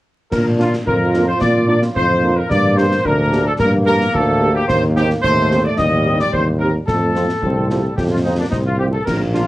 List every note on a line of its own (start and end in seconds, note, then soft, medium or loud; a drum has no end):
0.31 0.77 A#2 medium
0.31 0.83 D4 medium
0.31 0.44 A#4 medium
0.31 concert bass drum medium
0.31 snare medium
0.31 crash soft
0.59 0.69 A#3 medium
0.59 0.69 D4 medium
0.59 0.71 F4 medium
0.59 0.69 F4 medium
0.59 snare medium
0.73 snare soft
0.86 1.32 F2 medium
0.86 2.47 F4 medium
0.86 1.25 A#4 medium
0.86 concert bass drum medium
1.14 1.24 A#3 soft
1.14 1.24 D4 soft
1.14 1.24 F4 soft
1.14 snare medium
1.28 1.40 C5 medium
1.40 1.87 A#2 medium
1.40 1.66 D5 medium
1.40 concert bass drum medium
1.40 snare medium
1.68 1.79 A#3 medium
1.68 1.79 D4 medium
1.68 1.79 F4 medium
1.68 1.80 D5 medium
1.82 snare soft
1.95 2.41 F2 medium
1.95 2.34 C5 medium
1.95 concert bass drum medium
2.23 2.33 A#3 medium
2.23 2.33 D4 medium
2.23 2.33 F4 medium
2.37 2.50 A#4 medium
2.50 2.96 G2 medium
2.50 3.02 A#3 medium
2.50 2.76 D5 medium
2.50 concert bass drum medium
2.50 snare medium
2.77 2.87 A#3 medium
2.77 2.87 D4 medium
2.77 2.87 G4 medium
2.77 3.05 C5 medium
2.77 snare medium
2.92 snare medium
3.04 3.50 D2 medium
3.04 3.60 D4 medium
3.04 3.46 A#4 loud
3.04 concert bass drum medium
3.32 3.42 A#3 medium
3.32 3.42 D4 medium
3.32 3.42 G4 medium
3.32 snare medium
3.46 3.52 A4 medium
3.59 4.05 G2 medium
3.59 5.20 A#3 medium
3.59 3.72 A#4 medium
3.59 concert bass drum medium
3.59 snare medium
3.86 3.97 A#3 medium
3.86 3.97 D4 medium
3.86 3.97 G4 medium
3.86 4.12 A#4 loud
4.01 snare medium
4.14 4.60 D2 medium
4.14 4.55 A4 loud
4.14 concert bass drum medium
4.41 4.51 A#3 medium
4.41 4.51 D4 medium
4.41 4.51 G4 medium
4.55 4.68 G4 medium
4.68 5.14 D#2 medium
4.68 4.81 C5 medium
4.68 concert bass drum medium
4.68 snare medium
4.68 crash soft
4.96 5.06 C4 medium
4.96 5.06 D#4 medium
4.96 5.06 G4 medium
4.96 5.09 G4 medium
4.96 snare medium
5.11 snare medium
5.22 5.69 D#2 medium
5.22 5.74 A3 medium
5.22 5.61 C5 loud
5.22 concert bass drum medium
5.51 5.61 C4 medium
5.51 5.61 D#4 medium
5.51 5.61 G4 medium
5.51 snare medium
5.65 5.78 D5 medium
5.77 6.24 D#2 medium
5.77 6.84 G3 medium
5.77 6.16 D#5 medium
5.77 concert bass drum medium
5.77 snare medium
6.06 6.16 C4 medium
6.06 6.16 D#4 medium
6.06 6.16 G4 medium
6.20 6.33 D5 medium
6.20 snare medium
6.32 6.79 D#2 medium
6.32 6.45 C5 medium
6.32 concert bass drum medium
6.59 6.70 C4 medium
6.59 6.70 D#4 soft
6.59 6.71 G4 medium
6.59 6.72 A#4 medium
6.87 7.29 F2 medium
6.87 7.34 A3 medium
6.87 7.93 A4 medium
6.87 concert bass drum medium
6.87 snare medium
7.16 7.25 C4 medium
7.16 7.26 F4 soft
7.16 snare medium
7.29 snare medium
7.42 7.88 C2 medium
7.42 7.68 C4 medium
7.42 concert bass drum medium
7.70 7.96 G3 medium
7.70 7.80 C4 soft
7.70 7.80 F4 soft
7.70 snare medium
7.96 8.43 F2 medium
7.96 8.27 A3 medium
7.96 8.03 G4 medium
7.96 concert bass drum medium
7.96 snare medium
8.10 8.17 F4 medium
8.24 8.35 C4 soft
8.24 8.30 D#4 medium
8.24 8.35 F4 soft
8.38 8.45 A#3 medium
8.38 8.44 D4 medium
8.50 8.98 C2 medium
8.50 8.64 C4 medium
8.50 8.57 D#4 medium
8.50 concert bass drum medium
8.50 snare medium
8.65 8.78 F4 medium
8.78 8.90 C4 soft
8.78 8.92 C4 medium
8.78 8.89 F4 soft
8.78 8.85 G4 medium
8.92 9.05 A4 medium
9.05 9.47 A#1 medium
9.05 9.47 A#3 medium
9.05 9.18 A#4 medium
9.05 concert bass drum medium
9.05 snare medium
9.05 crash soft
9.33 9.44 A#3 medium
9.33 9.44 D4 medium
9.33 9.45 F4 medium
9.33 9.44 F4 medium
9.33 snare medium